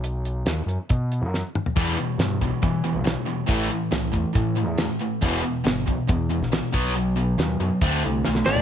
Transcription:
<<
  \new Staff \with { instrumentName = "Electric slide guitar" } { \time 4/4 \key e \minor \tempo 4 = 139 r1 | r1 | r1 | r1 |
r2. r8 d''8 | }
  \new Staff \with { instrumentName = "Lead electric guitar" } { \time 4/4 \key e \minor r1 | r1 | r1 | r1 |
r2. r8 d'8 | }
  \new Staff \with { instrumentName = "Distorted electric guitar" } { \clef bass \time 4/4 \key e \minor r1 | <e g b>8 <e g>8 <e g>8 <e g>8 <e g>8 <e g>8 <e g>8 <e g>8 | <a, e a>8 <a, e>8 <a, e>8 <a, e>8 <a, e>8 <a, e>8 <a, e>8 <a, e>8 | <e, b, e>8 <e, b,>8 <e, b,>8 <e, b,>8 <e, b,>8 <e, b,>8 <e, b,>8 <b, fis b>8 |
<b, fis>8 <b, fis>8 <b, fis>8 <b, fis>8 <d a d'>8 <d a>8 <d a>8 <d a>8 | }
  \new Staff \with { instrumentName = "Overdriven electric guitar" } { \clef bass \time 4/4 \key e \minor r1 | <e, b, e>8 <e, b,>8 <e, b,>8 <e, b,>8 <e, b,>8 <e, b,>8 <e, b,>8 <e, b,>8 | <a, e a>8 <a, e>8 <a, e>8 <a, e>8 <a, e>8 <a, e>8 <a, e>8 <a, e>8 | <e, b, e>8 <e, b,>8 <e, b,>8 <e, b,>8 <e, b,>8 <e, b,>8 <e, b,>8 <b, fis b>8 |
<b, fis>8 <b, fis>8 <b, fis>8 <b, fis>8 <d a c'>8 <d a>8 <d a>8 <d a>8 | }
  \new Staff \with { instrumentName = "Fingered electric bass" } { \clef bass \time 4/4 \key e \minor b,,4 dis,8 fis,16 r16 b,8. fis,8 r8. | e,8 r8 g,8 b,,16 r16 e8. b,,8 r8. | a,,8 r8 c,8 e,16 r16 a,8. e,8 r8. | e,,8 r8 g,,8 b,,16 r16 e,8. ais,,8 r16 b,,8~ |
b,,4 dis,8 fis,16 r16 d,8 c,8 b,,8 a,,8 | }
  \new DrumStaff \with { instrumentName = "Drums" } \drummode { \time 4/4 hh8 hh8 <hh sn>8 hh8 <hh bd>8 hh8 sn8 toml16 tomfh16 | <hh bd>8 hh8 <hh sn>8 <hh bd>8 <hh bd>8 hh8 <hh sn>8 hh8 | <hh bd>8 hh8 <hh sn>8 <hh bd>8 <hh bd>8 hh8 <hh sn>8 hh8 | <hh bd>8 hh8 <hh sn>8 <hh bd>8 <hh bd>8 hh16 sn16 <hh sn>8 <hh bd>8 |
hh8 hh8 <hh sn>8 hh8 <hh bd>8 hh8 sn16 sn16 sn16 tomfh16 | }
>>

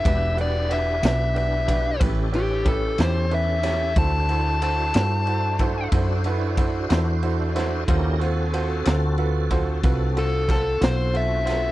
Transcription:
<<
  \new Staff \with { instrumentName = "Lead electric guitar" } { \time 12/8 \key d \major \tempo 4. = 61 e''8 d''8 e''4 e''4 r8 g'8 a'8 c''8 e''4 | a''4 a''2 r2. | r2. r8 a'8 a'8 bis'8 e''4 | }
  \new Staff \with { instrumentName = "Upright piano" } { \time 12/8 \key d \major <d' fis' g' b'>8 <d' fis' g' b'>8 <d' fis' g' b'>8 <d' fis' g' b'>8 <d' fis' g' b'>8 <d' fis' g' b'>8 <cis' e' g' b'>8 <cis' e' g' b'>8 <cis' e' g' b'>8 <cis' e' g' cis''>8 <cis' e' g' b'>8 <cis' e' g' cis''>8 | <e' fis' a' c''>8 <e' fis' a' c''>8 <e' fis' a' c''>8 <e' fis' a' c''>8 <e' fis' a' c''>8 <e' fis' a' c''>8 <e' fis' a' c''>8 <e' fis' a' b'>8 <e' fis' a' c''>8 <e' fis' a' c''>8 <e' fis' a' c''>8 <e' fis' a' c''>8 | <f' fis' a' bis'>8 <f' fis' a' bis'>8 <f' fis' a' bis'>8 <f' fis' a' bis'>8 <f' fis' a' b'>8 <f' fis' a' bis'>8 <f' fis' a' b'>8 <f' fis' a' bis'>8 <f' fis' a' bis'>8 <f' fis' a' bis'>8 <f' fis' a' bis'>8 <f' fis' a' bis'>8 | }
  \new Staff \with { instrumentName = "Tonewheel organ" } { \time 12/8 \key d \major <d' e' g' b'>2. <cis' g' a'>2. | <d' e' fis' c''>1. | <cis' e' g' bes'>8 <bis fis' a'>1~ <bis fis' a'>4. | }
  \new Staff \with { instrumentName = "Fretless electric bass" } { \clef bass \time 12/8 \key d \major e,,4. b,,4. a,,4. e,4. | d,4. g,4. fis,4. e,4. | dis,4. d,4. bis,,4. b,,4. | }
  \new DrumStaff \with { instrumentName = "Drums" } \drummode { \time 12/8 <bd cymr>8 cymr8 cymr8 <cymr sn>8 cymr8 <bd cymr>8 <bd cymr>8 cymr8 <bd cymr>8 <cymr sn>8 cymr8 <cymr sn>8 | <bd cymr>8 cymr8 cymr8 <cymr sn>8 cymr8 <bd cymr>8 <bd cymr>8 cymr8 <bd cymr>8 <cymr sn>8 cymr8 <cymr sn>8 | <bd cymr>8 cymr8 cymr8 <cymr sn>8 cymr8 <bd cymr>8 <bd cymr>8 cymr8 <bd cymr sn>8 <cymr sn>8 cymr8 <cymr sn>8 | }
>>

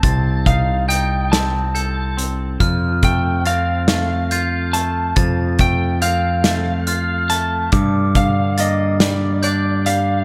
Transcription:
<<
  \new Staff \with { instrumentName = "Glockenspiel" } { \time 6/8 \key f \mixolydian \tempo 4. = 47 a'''4 g'''4 g'''4 | f'''4 a'''4 g'''4 | a'''4 g'''4 f'''4 | d'''4 a'''4 g'''4 | }
  \new Staff \with { instrumentName = "Electric slide guitar" } { \time 6/8 \key f \mixolydian a''8 f''8 g''8 a''4 r8 | r8 g''8 f''4. a''8 | r8 g''8 f''4. a''8 | r8 f''8 ees''8 d''8 d''8 f''8 | }
  \new Staff \with { instrumentName = "Clean electric guitar" } { \time 6/8 \key f \mixolydian <c' ees' a'>8 ees'8 ees'8 c'8 a'8 c'8 | f8 a8 c'8 a8 f'8 a8 | f8 a8 c'8 a8 f'8 a8 | g,8 d8 bes8 g8 d'8 g8 | }
  \new Staff \with { instrumentName = "Picked electric bass" } { \clef bass \time 6/8 \key f \mixolydian c,2. | f,2. | f,2. | g,2. | }
  \new DrumStaff \with { instrumentName = "Drums" } \drummode { \time 6/8 <hh bd>8 <hh bd>8 hh8 <hh sn>8 hh8 hh8 | <hh bd>8 <hh bd>8 hh8 <hh sn>8 hh8 hh8 | <hh bd>8 <hh bd>8 hh8 <hh sn>8 hh8 hh8 | <hh bd>8 <hh bd>8 hh8 <hh sn>8 hh8 hh8 | }
>>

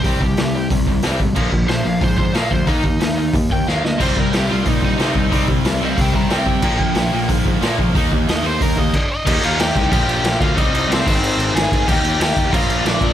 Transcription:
<<
  \new Staff \with { instrumentName = "Overdriven electric guitar" } { \time 4/4 \key c \minor \tempo 4 = 182 << { r1 | r1 | r1 | r1 |
r4. c''8 bes'8 g''8 r4 | r1 | r2. <d' d''>4 | <ees' ees''>8 <f' f''>8 <g' g''>8 <g' g''>8 <g' g''>4. <f' f''>8 |
<ees' ees''>4 <c' c''>2 <aes' aes''>4 | <g' g''>4 <g' g''>4 <f' f''>4 <d' d''>4 | } \\ { g'2 r2 | r4 c''8 f''8 c''8 c''8 f''8 c''8 | ees'2 r8 g''8 f''8 ees''8 | c''8 bes'8 g'8 f'8 ees'8 ees'4.~ |
ees'8 r4 f''8 g''8 bes''8 g''4~ | g''2 r2 | r4 ees''8 c''8 bes'8 ees''8 ees''8 ees''8 | r1 |
r1 | r1 | } >> }
  \new Staff \with { instrumentName = "Distorted electric guitar" } { \clef bass \time 4/4 \key c \minor r1 | r1 | r1 | <c g c'>4. <c g c'>4. <c g c'>4 |
<c g c'>4. <c g c'>4. <c g c'>4 | <bes, f bes>4. <bes, f bes>4. <bes, f bes>4 | <ees bes ees'>4. <ees bes ees'>4. r4 | r1 |
r1 | r1 | }
  \new Staff \with { instrumentName = "Distorted electric guitar" } { \clef bass \time 4/4 \key c \minor <c g c'>8 <c g>8 <c g>8 <c g>8 <c g>8 <c g>8 <c g c'>8 <c g>8 | <bes, f bes>8 <bes, f>8 <bes, f>8 <bes, f>8 <bes, f>8 <bes, f>8 <bes, f bes>8 <bes, f>8 | <ees bes ees'>8 <ees bes>8 <ees bes>8 <ees bes>8 <ees bes>8 <ees bes>8 <ees bes ees'>8 <ees bes>8 | <c g c'>8 <c g>8 <c g>8 <c g>8 <c g>8 <c g>8 <c g c'>8 <c g>8 |
<c g c'>8 <c g>8 <c g>8 <c g>8 <c g>8 <c g>8 <c g c'>8 <c g>8 | <bes, f bes>8 <bes, f>8 <bes, f>8 <bes, f>8 <bes, f>8 <bes, f>8 <bes, f bes>8 <bes, f>8 | <ees bes ees'>8 <ees bes>8 <ees bes>8 <ees bes>8 <ees bes>8 <ees bes>8 r4 | <ees bes ees'>2 <bes, f bes>2 |
<c g c'>4. <aes, ees aes>2~ <aes, ees aes>8 | <ees bes ees'>2 <bes, f bes>2 | }
  \new Staff \with { instrumentName = "Picked electric bass" } { \clef bass \time 4/4 \key c \minor c,8 c,8 c,4 c,8 c,8 c,8 aes,,8 | bes,,8 bes,,8 bes,,8 bes,,8 aes,4 bes,8 d,8 | ees,8 ees,8 ees,4 ees,8 ees,8 ees,8 d,8 | c,8 c,8 c,8 c,8 bes,4 c8 c,8 |
c,8 c,8 c,4 c,8 c,8 c,8 c8 | bes,,8 bes,,8 bes,,8 bes,,8 aes,4 bes,8 bes,,8 | ees,8 ees,8 ees,4 ees,8 ees,8 r4 | ees,8 ees,8 ees,8 c,8 bes,,8 bes,,8 bes,,8 d,8 |
c,8 c,8 c,8 aes,,8 aes,8 aes,,8 aes,,8 aes,8 | ees,8 ees,8 ees,8 ees,8 bes,,8 bes,,8 bes,,8 bes,8 | }
  \new DrumStaff \with { instrumentName = "Drums" } \drummode { \time 4/4 <hho bd>8 bd8 <hho sn>4 <hho bd>8 bd8 <hho sn>8 bd8 | <cymc bd>8 bd8 <hho sn>4 <hho bd>8 bd8 <hho sn>8 bd8 | <hho bd>8 bd8 <hho sn>4 <hho bd>8 bd8 sn8 sn8 | <cymc bd>8 bd8 <hho sn>4 <hho bd>8 bd8 <hho sn>8 bd8 |
<hho bd>8 bd8 <hho sn>4 <hho bd>8 bd8 <hho sn>8 bd8 | <cymc bd>8 bd8 <hho sn>4 <hho bd>8 bd8 <hho sn>8 bd8 | <hho bd>8 bd8 <hho sn>4 <hho bd>8 bd8 <cymc bd>4 | <cymc bd>8 cymc8 <cymc sn>8 <cymc bd>8 <cymc bd>8 cymc8 <cymc sn>8 <cymc bd>8 |
<cymc bd>8 cymc8 <cymc sn>8 <cymc bd>8 cymc8 cymc8 <cymc sn>8 <cymc bd>8 | <cymc bd>8 cymc8 <cymc sn>8 <cymc bd>8 <cymc bd>8 cymc8 <cymc sn>8 <cymc bd>8 | }
>>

